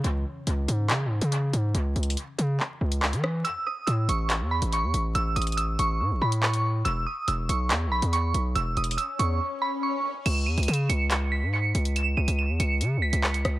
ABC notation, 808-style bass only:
X:1
M:4/4
L:1/16
Q:1/4=141
K:C#m
V:1 name="808-style bass" clef=bass
C,,2 z2 C,,2 G,,2 C,3/2 G,,3/2 C,3 G,,2 | C,,2 C,,2 z2 C,2 z2 C,,3 E,3 | z4 A,,2 A,,,3 E,,2 A,,,2 E,, A,,,2 | A,,,2 A,,,4 A,,,2 A,, A,,, A,,6 |
E,,,2 z2 E,,,2 B,,,2 E,,3/2 B,,,3/2 E,,3 B,,,2 | E,,,2 E,,,2 z2 E,,2 z8 | C,,2 E,, C,, C,2 C,,4- C,, G,,3 C,,2- | C,,2 C,, C,,2 E,, C,,2 C,3/2 C,,3/2 C,,3 C,,2 |]